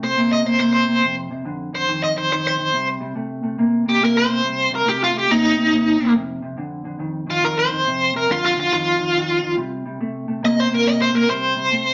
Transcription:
0.02 0.15 C3 medium
0.02 0.15 A3 medium
0.02 0.31 C5 medium
0.17 0.42 C3 medium
0.17 0.42 A#3 loud
0.33 0.46 D#5 medium
0.44 0.58 C3 medium
0.44 0.58 A#3 medium
0.44 0.59 C5 medium
0.60 0.84 C3 medium
0.60 0.84 A#3 loud
0.60 0.72 C5 medium
0.73 1.14 C5 medium
0.87 1.00 C3 medium
0.87 1.01 A#3 medium
1.03 1.27 F2 medium
1.03 1.27 C3 medium
1.30 1.43 F2 medium
1.30 1.43 C3 medium
1.45 1.69 F2 medium
1.45 1.70 D3 medium
1.73 1.86 F2 medium
1.73 1.86 D3 medium
1.73 2.01 C5 medium
1.88 2.12 F2 medium
1.88 2.13 D#3 medium
2.04 2.16 D#5 medium
2.16 2.29 F2 medium
2.16 2.29 D#3 medium
2.16 2.30 C5 medium
2.31 2.55 F2 medium
2.31 2.56 D#3 loud
2.31 2.45 C5 medium
2.47 2.87 C5 medium
2.58 2.71 F2 medium
2.58 2.72 D#3 medium
2.73 2.97 C3 medium
2.73 2.98 G3 medium
3.00 3.14 C3 medium
3.00 3.14 G3 medium
3.15 3.40 C3 medium
3.15 3.40 A3 medium
3.43 3.56 C3 medium
3.43 3.57 A3 medium
3.58 3.83 C3 medium
3.58 3.83 A#3 loud
3.85 3.99 C3 medium
3.85 3.99 A#3 medium
3.85 4.01 G4 medium
4.00 4.25 C3 medium
4.00 4.26 A#3 loud
4.04 4.16 A#4 medium
4.17 4.71 C5 loud
4.28 4.41 C3 medium
4.28 4.42 A#3 medium
4.43 4.68 C3 medium
4.43 4.68 G3 medium
4.71 4.84 C3 medium
4.71 4.85 G3 medium
4.71 4.87 A#4 medium
4.85 5.10 C3 medium
4.85 5.11 A3 medium
4.85 5.01 G4 medium
5.04 5.16 F4 medium
5.13 5.27 C3 medium
5.13 5.27 A3 medium
5.18 5.30 G4 medium
5.29 5.54 C3 medium
5.29 5.54 A#3 medium
5.29 6.13 D#4 medium
5.56 5.70 C3 medium
5.56 5.70 A#3 medium
5.71 5.96 C3 medium
5.71 5.96 A#3 medium
5.99 6.13 C3 medium
5.99 6.13 A#3 medium
6.15 6.39 F2 medium
6.15 6.40 C3 medium
6.42 6.55 F2 medium
6.42 6.56 C3 medium
6.57 6.82 F2 medium
6.57 6.82 D3 medium
6.84 6.98 F2 medium
6.84 6.98 D3 medium
6.99 7.24 F2 medium
6.99 7.24 D#3 medium
7.27 7.40 F2 medium
7.27 7.41 D#3 medium
7.27 7.43 F4 medium
7.42 7.67 F2 medium
7.42 7.67 D#3 medium
7.42 7.57 A#4 medium
7.59 8.13 C5 medium
7.71 7.84 F2 medium
7.71 7.84 D#3 medium
7.86 8.10 F2 medium
7.86 8.11 C3 medium
8.14 8.27 F2 medium
8.14 8.27 C3 medium
8.14 8.29 A#4 medium
8.28 8.53 F2 medium
8.28 8.54 D3 medium
8.28 8.44 F4 medium
8.46 8.58 F4 medium
8.56 8.69 F2 medium
8.56 8.70 D3 medium
8.56 8.72 F4 medium
8.72 8.96 F2 medium
8.72 8.96 D#3 medium
8.72 9.55 F4 loud
8.98 9.12 F2 medium
8.98 9.12 D#3 medium
9.14 9.39 F2 medium
9.14 9.39 D#3 medium
9.42 9.55 F2 medium
9.42 9.56 D#3 medium
9.57 9.82 C3 medium
9.57 9.82 G3 medium
9.86 9.98 C3 medium
9.86 9.99 G3 medium
10.00 10.25 C3 medium
10.00 10.25 A3 medium
10.28 10.41 C3 medium
10.28 10.41 A3 medium
10.43 10.67 C3 medium
10.43 10.67 A#3 loud
10.43 10.60 D#5 loud
10.60 10.72 C5 medium
10.69 10.83 C3 medium
10.69 10.83 A#3 medium
10.74 10.86 A#4 medium
10.85 11.10 C3 medium
10.85 11.10 A#3 medium
10.85 11.00 D#5 medium
11.02 11.14 C5 medium
11.12 11.26 C3 medium
11.12 11.26 A#3 medium
11.12 11.28 A#4 medium
11.28 11.53 C3 medium
11.28 11.53 G3 medium
11.28 11.94 C5 loud
11.56 11.69 C3 medium
11.56 11.70 G3 medium
11.71 11.94 C3 medium
11.71 11.94 A3 medium

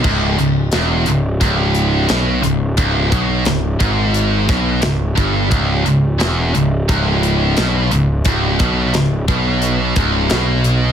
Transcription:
0.04 0.37 C#1 medium
0.04 0.37 C#2 loud
0.04 kick loud
0.04 crash medium
0.38 0.70 C#1 medium
0.38 0.66 C#2 medium
0.38 closed hi-hat medium
0.72 1.05 E1 medium
0.72 1.07 E2 medium
0.72 snare loud
0.72 closed hi-hat medium
1.06 1.39 C#1 medium
1.06 1.35 C#2 medium
1.06 closed hi-hat medium
1.41 2.06 C#1 medium
1.41 2.08 C#2 medium
1.41 kick loud
1.41 closed hi-hat medium
1.75 closed hi-hat medium
2.08 2.42 B1 medium
2.08 2.42 B2 loud
2.08 snare loud
2.08 closed hi-hat medium
2.43 2.76 C#1 medium
2.43 2.71 C#2 medium
2.43 closed hi-hat medium
2.77 3.10 C#1 medium
2.77 3.11 C#2 medium
2.77 kick loud
2.77 closed hi-hat medium
3.11 3.44 B1 medium
3.11 3.45 B2 medium
3.11 kick medium
3.11 closed hi-hat medium
3.45 3.78 C#1 medium
3.45 3.74 C#2 medium
3.45 snare medium
3.45 closed hi-hat medium
3.80 4.45 G#1 medium
3.80 4.48 G#2 medium
3.80 kick loud
3.80 closed hi-hat medium
4.14 closed hi-hat medium
4.49 4.81 B1 medium
4.49 4.82 B2 loud
4.49 kick medium
4.49 snare soft
4.49 closed hi-hat medium
4.82 5.15 C#1 medium
4.82 5.10 C#2 medium
4.82 snare loud
4.82 closed hi-hat medium
5.16 5.50 G1 medium
5.16 5.50 G2 loud
5.16 kick loud
5.16 closed hi-hat medium
5.50 5.84 C#1 medium
5.50 5.84 C#2 loud
5.50 kick medium
5.50 closed hi-hat medium
5.85 6.17 C#1 medium
5.85 6.13 C#2 medium
5.85 closed hi-hat medium
6.19 6.53 E1 medium
6.19 6.53 E2 medium
6.19 snare loud
6.19 closed hi-hat medium
6.54 6.87 C#1 medium
6.54 6.82 C#2 medium
6.54 closed hi-hat medium
6.89 7.53 C#1 medium
6.89 7.56 C#2 medium
6.89 kick loud
6.89 closed hi-hat medium
7.23 closed hi-hat medium
7.57 7.89 B1 medium
7.57 7.91 B2 medium
7.57 snare loud
7.57 closed hi-hat medium
7.91 8.24 C#1 medium
7.91 8.19 C#2 medium
7.91 closed hi-hat medium
8.25 8.58 C#1 medium
8.25 8.59 C#2 loud
8.25 kick loud
8.25 closed hi-hat medium
8.59 8.92 B1 medium
8.59 8.93 B2 medium
8.59 kick medium
8.59 closed hi-hat medium
8.94 9.26 C#1 medium
8.94 9.21 C#2 medium
8.94 snare medium
8.94 closed hi-hat medium
9.28 9.92 B1 medium
9.28 9.95 B2 medium
9.28 kick loud
9.28 closed hi-hat medium
9.62 closed hi-hat medium
9.96 10.28 C#1 medium
9.96 10.30 C#2 medium
9.96 kick medium
9.96 closed hi-hat medium
10.30 10.92 B1 medium
10.30 10.92 B2 medium
10.30 snare loud
10.30 closed hi-hat medium
10.64 closed hi-hat medium

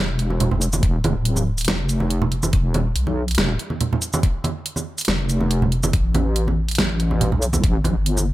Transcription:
0.00 0.50 E1 loud
0.19 closed hi-hat medium
0.30 high conga medium
0.40 closed hi-hat medium
0.40 low conga medium
0.51 0.82 F1 medium
0.51 low conga medium
0.62 closed hi-hat medium
0.62 shaker medium
0.73 high conga medium
0.73 shaker medium
0.83 1.14 E1 loud
0.83 kick loud
0.83 closed hi-hat medium
1.04 closed hi-hat medium
1.04 high conga loud
1.16 1.67 D1 medium
1.25 closed hi-hat medium
1.36 high conga medium
1.36 shaker medium
1.58 closed hi-hat medium
1.58 shaker medium
1.61 closed hi-hat medium
1.65 snare loud
1.65 closed hi-hat medium
1.68 2.52 F1 medium
1.68 closed hi-hat medium
1.68 high conga medium
1.89 closed hi-hat medium
1.89 shaker medium
2.00 high conga medium
2.10 closed hi-hat medium
2.22 low conga loud
2.32 closed hi-hat medium
2.43 high conga loud
2.43 shaker medium
2.53 2.94 E1 loud
2.53 kick loud
2.53 closed hi-hat medium
2.74 closed hi-hat medium
2.74 high conga loud
2.96 3.37 B1 medium
2.96 closed hi-hat medium
3.07 high conga medium
3.28 closed hi-hat soft
3.31 closed hi-hat medium
3.35 snare loud
3.35 closed hi-hat medium
3.35 high conga medium
3.38 3.58 E1 medium
3.38 closed hi-hat medium
3.59 closed hi-hat medium
3.70 high conga medium
3.81 closed hi-hat medium
3.81 low conga medium
3.93 low conga medium
4.02 closed hi-hat medium
4.02 shaker medium
4.13 high conga loud
4.13 shaker medium
4.23 kick loud
4.23 closed hi-hat medium
4.44 closed hi-hat medium
4.44 high conga medium
4.66 closed hi-hat medium
4.76 high conga medium
4.76 shaker medium
4.98 closed hi-hat soft
4.98 shaker medium
5.01 closed hi-hat medium
5.05 5.92 F1 loud
5.05 snare loud
5.05 closed hi-hat medium
5.05 high conga medium
5.08 closed hi-hat medium
5.29 closed hi-hat medium
5.29 shaker medium
5.40 high conga medium
5.51 closed hi-hat medium
5.62 low conga medium
5.72 closed hi-hat medium
5.83 high conga loud
5.83 shaker medium
5.93 7.31 A1 loud
5.93 kick loud
5.93 closed hi-hat medium
6.15 closed hi-hat soft
6.15 high conga medium
6.36 closed hi-hat medium
6.48 high conga medium
6.68 closed hi-hat soft
6.71 closed hi-hat medium
6.75 snare loud
6.75 closed hi-hat medium
6.78 closed hi-hat medium
6.78 high conga medium
7.00 closed hi-hat soft
7.11 high conga medium
7.21 closed hi-hat medium
7.21 low conga medium
7.32 7.62 B1 medium
7.32 low conga medium
7.42 closed hi-hat medium
7.42 shaker medium
7.53 high conga medium
7.53 shaker medium
7.64 7.95 A1 loud
7.64 kick loud
7.64 closed hi-hat medium
7.84 closed hi-hat soft
7.84 high conga medium
7.96 8.34 G1 medium
8.06 closed hi-hat medium
8.17 high conga medium
8.17 shaker medium

